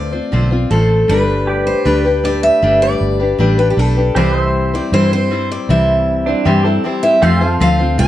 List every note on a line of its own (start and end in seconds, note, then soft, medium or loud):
0.00 0.20 D2 medium
0.00 0.13 D3 medium
0.00 0.32 A3 medium
0.00 0.13 C4 medium
0.00 0.13 F4 medium
0.00 0.11 C5 medium
0.00 0.67 D5 medium
0.12 0.32 C4 soft
0.12 0.32 F4 soft
0.12 0.32 C5 soft
0.32 0.65 B1 medium
0.32 0.51 D3 medium
0.32 0.52 A3 medium
0.32 0.52 C4 medium
0.32 0.51 F4 medium
0.32 0.49 C5 medium
0.51 0.70 C4 soft
0.51 0.71 F4 medium
0.51 0.70 C5 medium
0.70 1.03 A1 medium
0.70 1.09 A3 medium
0.70 1.09 C4 medium
0.70 1.10 F4 medium
0.70 1.10 A4 medium
0.70 1.10 C5 medium
1.08 1.73 G1 medium
1.08 1.85 G3 medium
1.08 1.84 A3 medium
1.08 1.85 D4 medium
1.08 1.86 G4 medium
1.08 1.63 B4 medium
1.08 1.86 B4 medium
1.47 4.13 G4 medium
1.47 4.13 B4 medium
1.47 4.14 D5 medium
1.67 1.85 C5 medium
1.85 2.49 D2 medium
1.85 2.05 G3 medium
1.85 2.05 A3 medium
1.85 2.05 D4 medium
1.85 2.05 G4 medium
1.85 2.24 B4 medium
1.85 2.03 B4 medium
2.05 2.23 D4 soft
2.05 2.24 G4 soft
2.05 2.24 B4 medium
2.23 2.61 A3 medium
2.23 2.62 D4 medium
2.23 2.63 G4 medium
2.23 2.63 B4 medium
2.23 2.43 D5 medium
2.43 2.82 E5 loud
2.62 2.94 G1 medium
2.62 3.38 G3 medium
2.62 3.20 A3 medium
2.62 3.20 D4 medium
2.62 3.20 G4 medium
2.62 3.18 B4 medium
2.82 3.55 D5 medium
3.01 3.33 G1 medium
3.20 3.39 D4 soft
3.20 3.39 G4 soft
3.20 3.39 B4 soft
3.38 3.72 A1 medium
3.38 3.58 G3 medium
3.38 3.58 A3 medium
3.38 3.59 D4 medium
3.38 3.58 G4 medium
3.38 3.56 B4 medium
3.58 3.76 D4 soft
3.58 3.77 G4 soft
3.58 3.77 B4 soft
3.58 3.70 B4 medium
3.70 3.79 G4 medium
3.76 4.10 B1 medium
3.76 3.96 A3 medium
3.76 3.97 D4 medium
3.76 3.96 G4 medium
3.76 4.18 A4 medium
3.76 3.95 B4 medium
3.96 4.17 D4 soft
3.96 4.16 G4 soft
3.96 4.16 B4 soft
4.15 4.79 C2 medium
4.15 4.73 C3 medium
4.15 4.74 E3 medium
4.15 4.74 G3 medium
4.15 4.75 C4 medium
4.15 4.73 E4 medium
4.15 7.19 G4 medium
4.15 4.37 B4 medium
4.15 4.74 C5 medium
4.15 4.73 C5 medium
4.15 4.42 D5 medium
4.37 7.20 C5 medium
4.42 7.20 E5 medium
4.73 4.92 G3 soft
4.73 4.92 C4 soft
4.73 4.93 E4 soft
4.73 4.93 C5 soft
4.73 4.93 D5 medium
4.92 5.56 G2 medium
4.92 5.12 C3 medium
4.92 5.12 E3 medium
4.92 5.12 G3 medium
4.92 5.12 C4 medium
4.92 5.12 E4 medium
4.92 5.12 C5 medium
4.92 5.11 C5 medium
5.12 5.29 G3 soft
5.12 5.30 C4 soft
5.12 5.31 E4 soft
5.12 5.31 C5 medium
5.12 5.51 C5 medium
5.31 5.69 G3 medium
5.31 5.70 C4 medium
5.31 5.70 E4 medium
5.31 5.70 C5 medium
5.52 5.70 D5 medium
5.69 6.33 C2 medium
5.69 6.27 C3 medium
5.69 6.27 E3 medium
5.69 6.27 G3 medium
5.69 6.27 C4 medium
5.69 6.26 E4 medium
5.69 6.25 C5 medium
5.69 7.00 E5 medium
6.26 6.45 G3 soft
6.26 6.45 C4 soft
6.26 6.45 D4 medium
6.26 6.45 E4 soft
6.26 6.46 C5 soft
6.45 6.78 G2 medium
6.45 6.65 C3 medium
6.45 6.65 E3 medium
6.45 6.65 G3 medium
6.45 6.65 C4 medium
6.45 6.64 E4 medium
6.45 6.64 G4 medium
6.45 6.63 C5 medium
6.64 6.83 G3 soft
6.64 6.84 C4 soft
6.64 6.84 E4 soft
6.64 6.84 A4 medium
6.64 6.84 C5 soft
6.84 7.03 G3 medium
6.84 7.04 C4 medium
6.84 7.03 E4 medium
6.84 7.12 G4 medium
6.84 7.02 C5 medium
7.03 7.22 G3 soft
7.03 7.22 C4 soft
7.03 7.23 E4 soft
7.03 7.22 C5 medium
7.03 7.22 E5 medium
7.22 7.60 F2 medium
7.22 7.41 F3 medium
7.22 7.42 A3 medium
7.22 7.42 C4 medium
7.22 7.41 F4 medium
7.22 7.47 G4 medium
7.22 8.08 C5 medium
7.22 7.40 C5 medium
7.22 7.44 E5 medium
7.22 7.60 F5 loud
7.41 7.60 C4 soft
7.41 7.61 F4 soft
7.41 7.60 C5 medium
7.41 8.08 F5 medium
7.47 8.08 A4 medium
7.60 7.98 D2 medium
7.60 7.80 F3 medium
7.60 7.80 A3 medium
7.60 7.80 C4 medium
7.60 7.80 F4 medium
7.60 7.78 C5 medium
7.60 7.97 F5 loud
7.79 7.98 C4 soft
7.79 7.99 F4 soft
7.79 7.99 C5 medium
7.98 8.08 C2 medium
7.98 8.08 A3 medium
7.98 8.08 C4 medium
7.98 8.08 F4 medium
7.98 8.08 C5 medium
7.98 8.08 A5 loud